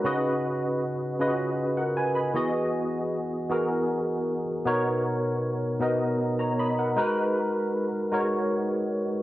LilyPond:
\new Staff \with { instrumentName = "Tine electric piano" } { \time 6/8 \key gis \minor \tempo 4. = 52 << { dis'16 r2 <ais' fis''>16 <b' gis''>16 <dis'' b''>16~ | <dis'' b''>16 r2 r8. | r2 r16 <cis'' ais''>16 <dis'' b''>16 <ais' fis''>16~ | <ais' fis''>16 r2 r8. | } \\ { <cis cis' fis' b' dis''>4 r8 <cis cis' eis' fis' b' dis''>4 r8 | <e b fis' gis' dis''>4 r8 <e b fis' gis' ais'>4 r8 | <b, b dis' ais' cis''>4 r8 <b, b dis' ais' dis''>4 r8 | <gis dis' fis' ais' b'>4 r8 <gis dis' fis' ais' cis''>4 r8 | } >> }